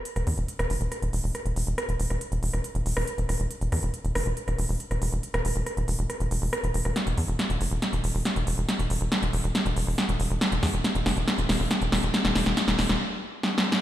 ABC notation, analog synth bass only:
X:1
M:4/4
L:1/16
Q:1/4=139
K:Flyd
V:1 name="Analog synth bass" clef=bass
z E,,, E,, E,,, z E,,, F,,, E,,, z E,,, E,,, E,,, z E,,, E,,, E,,, | z E,,, E,,, E,,, z E,,, E,,, E,,, z E,,, E,,, E,,, z E,,, E,,, E,,, | z E,,, E,, E,,, z E,,, F,,, E,,, z E,,, E,,, E,,, z E,,, E,,, E,,, | z E,,, E,,, E,,, z E,,, E,,, E,,, z E,,, E,,, E,,, z E,,, E,,, E,,, |
z E,,, E,, E,,, z E,,, F,,, E,,, z E,,, E,,, E,,, z E,,, E,,, E,,, | z E,,, E,,, E,,, z E,,, E,,, E,,, z E,,, E,,, E,,, z E,,, E,,, E,,, | z E,,, E,, E,,, z E,,, F,,, E,,, z E,,, E,,, E,,, z E,,, E,,, E,,, | z E,,, E,,, E,,, z E,,, E,,, E,,, z8 |]